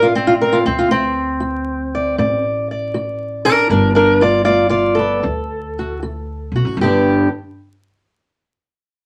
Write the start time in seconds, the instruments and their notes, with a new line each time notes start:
Already playing: upright bass A1, steel-string acoustic guitar D5
0.02 steel-string acoustic guitar F4
0.15 steel-string acoustic guitar C4
0.27 steel-string acoustic guitar F4
0.41 steel-string acoustic guitar A#4
0.52 steel-string acoustic guitar F4
0.65 upright bass D2, steel-string acoustic guitar C4
0.79 steel-string acoustic guitar F4
0.91 steel-string acoustic guitar C4
1.40 steel-string acoustic guitar F#4
1.95 steel-string acoustic guitar D5
2.18 upright bass A1, steel-string acoustic guitar A2 D5
2.71 steel-string acoustic guitar D5
2.94 steel-string acoustic guitar F#4
3.45 steel-string acoustic guitar D4 A#4
3.69 upright bass G1, steel-string acoustic guitar G3 D4 A#4
3.95 steel-string acoustic guitar D4 A#4
4.21 steel-string acoustic guitar F4 D5
4.45 steel-string acoustic guitar B3 F4 D5
4.70 steel-string acoustic guitar F4 D5
4.95 steel-string acoustic guitar A4
4.99 steel-string acoustic guitar B3
5.23 upright bass D2, steel-string acoustic guitar D3
5.79 steel-string acoustic guitar F#4
6.03 steel-string acoustic guitar F#4
6.52 upright bass B1
6.56 steel-string acoustic guitar F#4
6.65 upright bass A1
6.77 upright bass G1
6.81 steel-string acoustic guitar G2 D3 B3 D4 G4